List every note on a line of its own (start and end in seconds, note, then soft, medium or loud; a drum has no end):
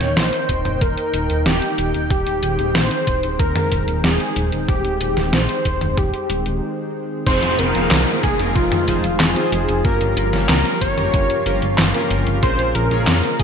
0.00 0.16 D#1 medium
0.00 7.23 D#3 medium
0.00 2.07 A#3 medium
0.00 2.08 D#4 medium
0.00 0.18 C#5 loud
0.00 7.23 G5 medium
0.00 snare soft
0.00 closed hi-hat soft
0.17 0.32 A#1 loud
0.17 0.83 C5 loud
0.17 snare loud
0.17 closed hi-hat medium
0.33 closed hi-hat soft
0.49 0.64 D#1 medium
0.49 kick medium
0.49 closed hi-hat medium
0.65 0.80 D#1 medium
0.65 closed hi-hat soft
0.65 mid tom medium
0.81 0.96 D#1 loud
0.81 1.45 A#4 loud
0.81 kick loud
0.81 closed hi-hat medium
0.98 closed hi-hat soft
1.14 1.28 D#1 medium
1.14 closed hi-hat medium
1.30 1.45 D#1 medium
1.30 closed hi-hat soft
1.46 1.61 D#1 loud
1.46 1.91 G4 loud
1.46 snare loud
1.46 closed hi-hat medium
1.62 closed hi-hat soft
1.78 1.93 D#1 medium
1.78 closed hi-hat medium
1.94 2.09 D#1 medium
1.94 closed hi-hat soft
2.10 2.25 D#1 loud
2.10 7.23 G#3 medium
2.10 7.23 C4 medium
2.10 2.77 G4 loud
2.10 kick loud
2.10 closed hi-hat medium
2.27 2.41 D#1 medium
2.27 closed hi-hat soft
2.43 2.58 D#1 medium
2.43 closed hi-hat medium
2.59 2.74 D#1 medium
2.59 closed hi-hat soft
2.75 2.90 A#1 loud
2.75 3.39 C5 loud
2.75 snare loud
2.75 closed hi-hat medium
2.91 closed hi-hat soft
3.07 3.22 D#1 medium
3.07 kick loud
3.07 closed hi-hat medium
3.23 3.38 D#1 medium
3.23 closed hi-hat soft
3.39 3.54 D#1 loud
3.39 4.00 A#4 loud
3.39 kick loud
3.39 closed hi-hat medium
3.56 closed hi-hat soft
3.56 mid tom medium
3.72 3.87 D#1 loud
3.72 kick medium
3.72 closed hi-hat medium
3.88 4.03 D#1 medium
3.88 closed hi-hat soft
4.04 4.19 D#1 loud
4.04 4.49 G#4 medium
4.04 snare loud
4.04 closed hi-hat medium
4.20 closed hi-hat soft
4.36 4.51 D#1 loud
4.36 closed hi-hat medium
4.52 4.67 D#1 medium
4.52 closed hi-hat soft
4.69 4.83 D#1 loud
4.69 5.35 G4 loud
4.69 kick loud
4.69 closed hi-hat medium
4.85 5.00 D#1 medium
4.85 closed hi-hat soft
5.01 5.16 D#1 loud
5.01 closed hi-hat medium
5.17 5.32 D#1 medium
5.17 snare soft
5.17 closed hi-hat soft
5.33 5.48 A#1 loud
5.33 5.99 C5 loud
5.33 snare loud
5.33 closed hi-hat medium
5.49 closed hi-hat soft
5.65 5.80 D#1 loud
5.65 kick medium
5.65 closed hi-hat medium
5.81 5.96 D#1 medium
5.81 closed hi-hat soft
5.81 mid tom medium
5.97 6.12 D#1 loud
5.97 6.62 G4 medium
5.97 kick loud
5.97 closed hi-hat medium
6.14 closed hi-hat soft
6.30 6.45 D#1 medium
6.30 closed hi-hat medium
6.46 6.61 D#1 medium
6.46 closed hi-hat soft
7.26 7.41 F1 loud
7.26 9.82 D#3 medium
7.26 7.71 F3 medium
7.26 13.43 F3 medium
7.26 9.82 G#3 medium
7.26 7.71 C4 medium
7.26 9.82 C4 medium
7.26 7.71 D#4 medium
7.26 7.71 F4 medium
7.26 13.43 F4 medium
7.26 7.71 G#4 medium
7.26 7.60 C5 loud
7.26 7.71 C5 medium
7.26 kick loud
7.26 closed hi-hat medium
7.26 crash loud
7.26 downlifter medium
7.43 7.58 F1 medium
7.43 closed hi-hat soft
7.59 7.74 F1 medium
7.59 8.23 A#4 loud
7.59 closed hi-hat loud
7.75 7.90 F1 medium
7.75 8.02 F3 medium
7.75 8.02 C4 medium
7.75 8.02 D#4 medium
7.75 8.02 F4 medium
7.75 8.02 G#4 medium
7.75 8.02 F5 loud
7.75 closed hi-hat soft
7.91 8.06 C2 loud
7.91 snare loud
7.91 clap loud
7.91 closed hi-hat medium
8.07 closed hi-hat soft
8.23 8.38 F1 loud
8.23 8.53 G#4 medium
8.23 kick loud
8.23 closed hi-hat loud
8.39 8.54 F1 medium
8.39 8.84 F3 medium
8.39 8.84 C4 medium
8.39 8.84 D#4 medium
8.39 8.84 F4 medium
8.39 8.84 G#4 medium
8.39 8.84 A#4 medium
8.39 closed hi-hat soft
8.56 8.70 F1 loud
8.56 9.22 F4 medium
8.56 kick loud
8.56 closed hi-hat medium
8.72 closed hi-hat soft
8.72 mid tom medium
8.88 9.03 F1 loud
8.88 9.05 F3 medium
8.88 9.05 C4 medium
8.88 9.05 D#4 medium
8.88 9.05 F4 medium
8.88 9.05 G#4 medium
8.88 9.05 C5 loud
8.88 kick medium
8.88 closed hi-hat loud
9.04 9.19 F1 medium
9.04 closed hi-hat soft
9.20 9.35 F1 loud
9.20 9.86 G#4 loud
9.20 snare loud
9.20 clap loud
9.20 closed hi-hat medium
9.36 9.81 F3 loud
9.36 9.81 C4 medium
9.36 9.81 D#4 medium
9.36 9.81 F4 medium
9.36 9.81 G#4 medium
9.36 9.81 C5 loud
9.36 closed hi-hat soft
9.52 9.67 F1 loud
9.52 closed hi-hat loud
9.69 9.83 F1 medium
9.69 closed hi-hat soft
9.85 10.00 G1 loud
9.85 10.29 G2 medium
9.85 13.43 C#3 medium
9.85 12.40 G3 medium
9.85 13.43 A#3 medium
9.85 10.29 A#3 medium
9.85 10.29 C#4 medium
9.85 10.29 F4 medium
9.85 10.29 G4 medium
9.85 10.29 A#4 medium
9.85 10.49 A#4 loud
9.85 kick loud
9.85 closed hi-hat medium
10.01 10.16 G1 medium
10.01 closed hi-hat soft
10.17 10.32 G1 medium
10.17 closed hi-hat loud
10.33 10.48 G1 medium
10.33 10.60 G2 medium
10.33 10.60 A#3 medium
10.33 10.60 C#4 medium
10.33 10.60 F4 medium
10.33 10.60 G4 medium
10.33 10.60 C#5 loud
10.33 snare soft
10.33 closed hi-hat soft
10.49 10.64 C#2 loud
10.49 10.79 A#4 loud
10.49 snare loud
10.49 clap loud
10.49 closed hi-hat medium
10.65 closed hi-hat soft
10.81 10.96 G1 medium
10.81 11.74 C#5 loud
10.81 kick medium
10.81 closed hi-hat loud
10.98 11.12 G1 medium
10.98 11.42 G2 medium
10.98 11.42 A#3 medium
10.98 11.42 C#4 medium
10.98 11.42 F4 medium
10.98 11.42 G4 medium
10.98 11.42 A#4 medium
10.98 closed hi-hat soft
10.98 mid tom medium
11.14 11.29 G1 loud
11.14 kick loud
11.14 closed hi-hat medium
11.30 closed hi-hat soft
11.46 11.61 G1 loud
11.46 11.63 G2 medium
11.46 11.63 A#3 medium
11.46 11.63 C#4 medium
11.46 11.63 F4 medium
11.46 11.63 G4 medium
11.46 11.63 A#4 loud
11.46 closed hi-hat loud
11.62 11.77 G1 medium
11.62 closed hi-hat soft
11.78 11.93 G1 loud
11.78 snare loud
11.78 clap loud
11.78 closed hi-hat medium
11.94 12.39 G2 loud
11.94 12.39 A#3 medium
11.94 12.39 C#4 medium
11.94 12.39 F4 medium
11.94 12.39 G4 medium
11.94 12.39 A#4 loud
11.94 closed hi-hat soft
12.11 12.25 G1 medium
12.11 closed hi-hat medium
12.27 12.41 G1 medium
12.27 closed hi-hat soft
12.43 12.58 A#1 loud
12.43 12.87 A#2 medium
12.43 13.43 G#3 medium
12.43 12.87 A#3 medium
12.43 12.87 C#4 medium
12.43 12.87 F4 medium
12.43 12.87 G#4 medium
12.43 12.87 A#4 medium
12.43 12.76 C5 loud
12.43 kick loud
12.43 closed hi-hat medium
12.59 12.74 A#1 medium
12.59 closed hi-hat soft
12.75 12.90 A#1 loud
12.75 13.41 A#4 loud
12.75 closed hi-hat loud
12.91 13.06 A#1 medium
12.91 13.18 A#2 medium
12.91 13.18 A#3 medium
12.91 13.18 C#4 medium
12.91 13.18 F4 medium
12.91 13.18 G#4 medium
12.91 13.18 C#5 loud
12.91 closed hi-hat soft
13.07 13.22 F2 loud
13.07 snare loud
13.07 clap medium
13.07 closed hi-hat medium
13.24 closed hi-hat soft
13.39 13.43 A#1 medium
13.39 13.43 G#4 medium
13.39 kick loud
13.39 closed hi-hat loud